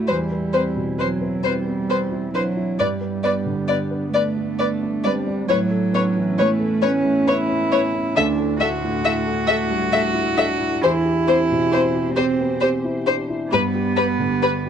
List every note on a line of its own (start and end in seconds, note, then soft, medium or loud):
0.00 0.11 A2 soft
0.00 0.11 D4 soft
0.00 0.11 E4 soft
0.00 2.76 E4 soft
0.00 0.11 F#4 soft
0.00 0.10 D5 soft
0.08 2.77 E2 soft
0.08 1.01 G3 medium
0.08 0.17 B4 soft
0.08 0.16 C5 soft
0.32 0.67 B4 soft
0.53 0.90 C4 soft
0.53 0.62 B4 soft
0.53 0.61 C5 soft
0.76 1.12 B2 soft
0.98 1.45 F#3 medium
0.98 1.35 C4 soft
0.98 1.07 B4 soft
0.98 1.07 C5 soft
1.21 1.58 B4 soft
1.43 2.34 G3 medium
1.43 1.80 C4 soft
1.43 1.53 B4 soft
1.43 1.52 C5 soft
1.66 1.89 B3 soft
1.89 2.26 C4 soft
1.89 1.98 B4 soft
1.89 1.98 C5 soft
2.12 2.48 E4 soft
2.34 2.80 F#3 medium
2.34 2.57 D4 soft
2.34 2.42 B4 soft
2.34 2.42 C5 soft
2.56 2.79 E4 soft
2.79 5.46 G2 soft
2.79 4.14 G3 medium
2.79 5.50 B3 medium
2.79 5.50 D4 medium
2.79 2.88 B4 soft
2.79 2.87 D5 soft
3.01 3.38 B4 soft
3.23 3.60 B3 soft
3.23 3.32 B4 soft
3.23 3.32 D5 soft
3.46 3.82 D3 soft
3.68 4.05 B3 soft
3.68 3.77 B4 soft
3.68 3.76 D5 soft
3.91 4.28 B4 soft
4.14 5.07 A3 medium
4.14 4.50 B3 soft
4.14 4.23 B4 soft
4.14 4.22 D5 soft
4.37 4.60 A3 soft
4.59 4.96 B3 soft
4.59 4.68 B4 soft
4.59 4.67 D5 soft
4.83 5.19 D4 soft
5.04 5.50 G3 medium
5.04 5.27 C4 soft
5.04 5.14 B4 soft
5.04 5.12 D5 soft
5.27 5.50 D4 soft
5.49 8.13 A2 medium
5.49 6.42 F#3 medium
5.49 8.17 C#4 medium
5.49 10.82 E4 medium
5.49 8.13 B4 medium
5.49 5.58 B4 soft
5.49 5.57 C#5 medium
5.70 6.07 A4 soft
5.93 6.29 B3 soft
5.93 6.03 B4 soft
5.93 6.02 C#5 soft
6.16 6.52 E3 soft
6.38 6.84 A3 medium
6.38 6.74 B3 soft
6.38 6.47 B4 soft
6.38 6.47 C#5 soft
6.59 6.96 A4 soft
6.81 7.18 B3 soft
6.81 7.29 C#4 medium
6.81 6.91 B4 soft
6.81 6.90 C#5 soft
7.04 7.27 A3 soft
7.25 7.62 B3 soft
7.25 8.17 E4 medium
7.25 7.35 B4 soft
7.25 7.35 C#5 soft
7.48 7.85 C#4 soft
7.71 7.94 B3 soft
7.71 7.81 B4 soft
7.71 7.79 C#5 soft
7.95 8.17 C#4 soft
8.16 10.79 D2 medium
8.16 8.60 D4 medium
8.16 10.83 D4 medium
8.16 8.25 A4 medium
8.16 10.83 A4 medium
8.16 8.25 E5 medium
8.39 8.74 A4 soft
8.60 8.96 A3 soft
8.60 10.83 F#4 loud
8.60 8.70 A4 soft
8.60 8.68 E5 soft
8.83 9.18 A2 soft
9.04 9.40 A3 soft
9.04 9.13 A4 medium
9.04 9.12 E5 soft
9.26 9.62 A4 soft
9.48 9.84 A3 soft
9.48 9.58 A4 medium
9.48 9.56 E5 medium
9.70 9.93 G3 soft
9.92 10.29 A3 soft
9.92 10.02 A4 medium
9.92 10.00 E5 soft
10.14 10.51 E4 soft
10.37 10.60 D4 soft
10.37 10.46 A4 medium
10.37 10.45 E5 soft
10.59 10.82 E4 soft
10.82 13.47 E2 medium
10.82 12.15 E4 loud
10.82 10.91 G4 medium
10.82 14.69 G4 medium
10.82 13.52 C5 medium
10.82 10.91 C5 medium
11.05 11.41 G4 soft
11.27 11.63 C4 soft
11.27 11.35 G4 medium
11.27 11.36 C5 soft
11.51 11.86 B2 soft
11.71 12.08 C4 medium
11.71 11.79 G4 medium
11.71 11.81 C5 soft
11.95 12.31 G4 soft
12.15 12.60 C4 medium
12.15 12.53 C4 soft
12.15 12.24 G4 medium
12.15 12.24 C5 medium
12.40 12.62 B3 soft
12.61 12.98 C4 soft
12.61 12.70 G4 medium
12.61 12.69 C5 medium
12.84 13.20 E4 soft
13.06 13.29 D4 soft
13.06 13.14 G4 medium
13.06 13.14 C5 medium
13.30 13.52 E4 soft
13.51 14.69 G2 medium
13.51 14.69 B3 loud
13.51 14.69 D4 medium
13.51 13.59 G4 medium
13.51 13.60 B4 medium
13.74 14.11 G4 soft
13.96 14.34 B3 soft
13.96 14.05 G4 medium
13.96 14.04 B4 soft
14.19 14.56 D3 soft
14.42 14.69 B3 soft
14.42 14.50 G4 soft
14.42 14.50 B4 soft
14.66 14.69 G4 soft